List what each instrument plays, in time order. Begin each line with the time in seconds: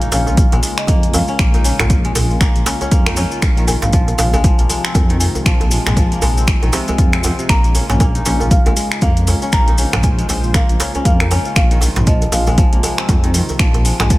Already playing: analog synth pad C#3 G#3 A#3 F4, kora A#3 C#4, marimba F5
0.01 kora D#4, closed hi-hat, maracas
0.12 detuned saw bass A#1, kora C#4, marimba F5, open hi-hat, djembe slap, maracas
0.26 kora F4, djembe tone, maracas
0.37 kick, closed hi-hat, maracas
0.52 detuned saw bass A#1, kora G#3, closed hi-hat, djembe tone, maracas
0.63 kora G#3, open hi-hat, maracas
0.78 marimba D#5, finger snap, closed hi-hat, maracas
0.87 detuned saw bass F2, kora A#3, kick, closed hi-hat, djembe tone, maracas
1.03 closed hi-hat, maracas
1.14 kora C#4, marimba F5, open hi-hat, djembe tone, maracas
1.28 kora C#4, maracas
1.39 detuned saw bass A#1, finger snap, kick, closed hi-hat, maracas
1.54 kora D#4, closed hi-hat, djembe tone, maracas
1.64 kora C#4, open hi-hat, maracas
1.79 detuned saw bass A#1, kora F4, finger snap, closed hi-hat, mid tom, djembe slap, djembe tone, maracas
1.90 kick, closed hi-hat, maracas
2.04 kora G#3, closed hi-hat, maracas
2.15 detuned saw bass A#1, kora G#3, open hi-hat, djembe slap, djembe tone, maracas
2.30 maracas
2.41 kora A#3, finger snap, kick, closed hi-hat, djembe tone, maracas
2.56 detuned saw bass A#1, closed hi-hat, maracas
2.66 kora C#4, open hi-hat, djembe slap, maracas
2.81 kora C#4, closed hi-hat, djembe tone, maracas
2.91 detuned saw bass F2, kora A#3, kick, closed hi-hat, maracas
3.06 kora D#4, finger snap, closed hi-hat, djembe tone, maracas
3.16 kora C#4, open hi-hat, djembe slap, maracas
3.31 kora F4, maracas
3.42 detuned saw bass A#1, analog synth pad C3 F3 G#3, finger snap, kick, closed hi-hat, djembe tone, maracas
3.57 kora D#3, closed hi-hat, maracas
3.67 kora D#3, marimba G#5, open hi-hat, djembe tone, maracas
3.82 detuned saw bass A#1, marimba F5, closed hi-hat, mid tom, djembe slap, maracas
3.93 kora F3, kick, closed hi-hat, maracas
4.08 closed hi-hat, djembe tone, maracas
4.18 detuned saw bass A#1, kora G#3, marimba F5, open hi-hat, djembe slap, maracas
4.33 kora G#3, djembe tone, maracas
4.44 kora F3, kick, closed hi-hat, maracas
4.59 detuned saw bass A#1, kora A#3, closed hi-hat, maracas
4.69 kora G#3, open hi-hat, djembe tone, maracas
4.84 kora C4, marimba G#5, finger snap, closed hi-hat, maracas
4.95 detuned saw bass F2, kick, closed hi-hat, djembe tone, maracas
5.09 kora D#3, closed hi-hat, maracas
5.20 kora D#3, marimba G#5, open hi-hat, maracas
5.35 djembe tone, maracas
5.46 detuned saw bass A#1, kora F3, finger snap, kick, closed hi-hat, maracas
5.61 closed hi-hat, djembe tone, maracas
5.71 kora G#3, open hi-hat, maracas
5.86 detuned saw bass A#1, kora G#3, finger snap, closed hi-hat, mid tom, djembe slap, maracas
5.97 kora F3, kick, closed hi-hat, djembe tone, maracas
6.12 kora A#3, closed hi-hat, maracas
6.22 detuned saw bass A#1, kora G#3, open hi-hat, djembe slap, djembe tone, maracas
6.37 kora C4, maracas
6.47 finger snap, kick, closed hi-hat, maracas
6.62 detuned saw bass A#1, kora D#3, closed hi-hat, djembe tone, maracas
6.73 kora C3, open hi-hat, djembe slap, maracas
6.88 kora G#3, closed hi-hat, djembe tone, maracas
6.98 detuned saw bass F2, kora F4, kick, closed hi-hat, maracas
7.13 kora C4, finger snap, closed hi-hat, maracas
7.23 kora C4, open hi-hat, djembe slap, djembe tone, maracas
7.38 kora C3, closed hi-hat, maracas
7.49 detuned saw bass A#1, analog synth pad C#3 A#3 F4, kora A#3, marimba A#5, finger snap, kick, closed hi-hat, maracas
7.64 closed hi-hat, maracas
7.75 kora C#4, open hi-hat, djembe tone, maracas
7.89 detuned saw bass A#1, kora C#4, closed hi-hat, mid tom, djembe slap, maracas
8.00 kora A#3, marimba G#5, kick, closed hi-hat, djembe tone, maracas
8.15 kora D#4, closed hi-hat, maracas
8.25 detuned saw bass A#1, kora C#4, open hi-hat, djembe slap, maracas
8.40 kora F4, djembe tone, maracas
8.51 marimba F5, kick, closed hi-hat, maracas
8.66 detuned saw bass A#1, kora G#3, closed hi-hat, djembe tone, maracas
8.76 kora G#3, open hi-hat, maracas
8.92 finger snap, closed hi-hat, maracas
9.01 detuned saw bass F2, kora A#3, marimba F5, kick, closed hi-hat, djembe tone, maracas
9.17 closed hi-hat, maracas
9.27 kora C#4, open hi-hat, djembe tone, maracas
9.42 kora C#4, maracas
9.52 detuned saw bass A#1, kora A#3, analog synth pad C5, marimba A#5, finger snap, kick, closed hi-hat, maracas
9.68 kora D#4, closed hi-hat, djembe tone, maracas
9.78 kora C#4, open hi-hat, maracas
9.93 detuned saw bass A#1, kora F4, finger snap, closed hi-hat, mid tom, djembe slap, djembe tone, maracas
10.03 marimba G#5, kick, closed hi-hat, maracas
10.19 kora G#3, closed hi-hat, maracas
10.29 detuned saw bass A#1, kora G#3, open hi-hat, djembe slap, djembe tone, maracas
10.44 maracas
10.54 kora A#3, marimba F5, finger snap, kick, closed hi-hat, djembe tone, maracas
10.69 detuned saw bass A#1, closed hi-hat, maracas
10.80 kora C#4, open hi-hat, djembe slap, maracas
10.95 kora C#4, closed hi-hat, djembe tone, maracas
11.05 detuned saw bass F2, kora A#3, marimba F5, kick, closed hi-hat, maracas
11.20 kora D#4, finger snap, closed hi-hat, djembe tone, maracas
11.31 kora C#4, open hi-hat, djembe slap, maracas
11.45 kora F4, maracas
11.56 detuned saw bass A#1, analog synth pad C3 F3, marimba F5, finger snap, kick, closed hi-hat, djembe tone, maracas
11.71 kora D#3, closed hi-hat, maracas
11.81 kora D#3, open hi-hat, djembe tone, maracas
11.96 detuned saw bass A#1, closed hi-hat, mid tom, djembe slap, maracas
12.07 kora F3, marimba D#5, kick, closed hi-hat, maracas
12.21 closed hi-hat, djembe tone, maracas
12.32 detuned saw bass A#1, kora G#3, marimba F5, open hi-hat, djembe slap, maracas
12.47 kora G#3, djembe tone, maracas
12.58 kora F3, kick, closed hi-hat, maracas
12.73 detuned saw bass A#1, kora A#3, closed hi-hat, maracas
12.83 kora G#3, open hi-hat, djembe tone, maracas
12.98 kora C4, finger snap, closed hi-hat, maracas
13.09 detuned saw bass F2, kick, closed hi-hat, djembe tone, maracas
13.24 kora D#3, closed hi-hat, maracas
13.34 kora D#3, open hi-hat, maracas
13.49 djembe tone, maracas
13.59 detuned saw bass A#1, kora F3, finger snap, kick, closed hi-hat, maracas
13.74 closed hi-hat, djembe tone, maracas
13.85 kora G#3, open hi-hat, maracas
14.00 detuned saw bass A#1, kora G#3, finger snap, closed hi-hat, mid tom, djembe slap, maracas
14.10 kora F3, kick, closed hi-hat, djembe tone, maracas